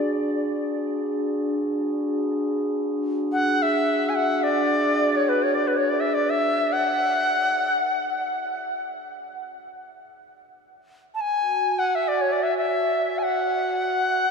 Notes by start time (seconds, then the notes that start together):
Already playing: D4 F#4 G#4 D5
3.32 F#5
3.62 E5
4.09 G#5
4.15 F#5
4.43 D5
5.12 C#5 D5
5.29 B4
5.43 C#5
5.55 D5
5.67 B4
5.77 C#5
5.90 D5
6.00 E5
6.14 D5
6.30 E5
6.72 F#5
11.15 A5
11.21 G#5
11.38 F#4
11.79 F#5
11.95 E5
12.08 D5
12.21 C#5
12.32 D5
12.43 E5
12.58 E5
13.19 G#5
13.23 F#5